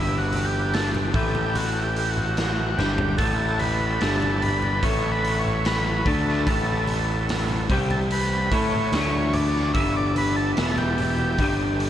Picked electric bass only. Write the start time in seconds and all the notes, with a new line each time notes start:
Already playing: G1
1.14 A1
2.79 G1
3.19 A1
4.02 G1
4.83 A1
6.06 D2
6.47 A1
7.70 C2
8.51 A2
8.92 D2
9.75 G1
10.57 E1
11.39 G1